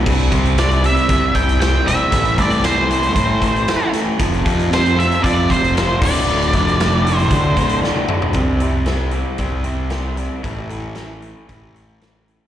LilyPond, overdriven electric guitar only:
\new Staff \with { instrumentName = "Overdriven electric guitar" } { \clef bass \time 4/4 \key c \mixolydian \tempo 4 = 116 <c g c'>8 <c g c'>8 <c g c'>8 <c g c'>8 <c g c'>8 <c g c'>8 <c g c'>8 <c g c'>8 | <a, e a>8 <a, e a>8 <a, e a>8 <a, e a>8 <a, e a>8 <a, e a>8 <a, e a>8 <a, e a>8 | <f, c f>8 <f, c f>8 <f, c f>8 <f, c f>8 <f, c f>8 <f, c f>8 <f, c f>8 <d, a, d>8 | <d, a, d>8 <d, a, d>8 <d, a, d>8 <d, a, d>8 <d, a, d>8 <d, a, d>8 <d, a, d>8 <d, a, d>8 |
<c g c'>8 <c g c'>8 <c g c'>8 <c g c'>8 <c g c'>8 <c g c'>8 <c g c'>8 <c g c'>8 | <a, e a>8 <a, e a>8 <a, e a>8 <a, e a>8 <a, e a>8 <a, e a>8 <a, e a>8 <a, e a>8 | }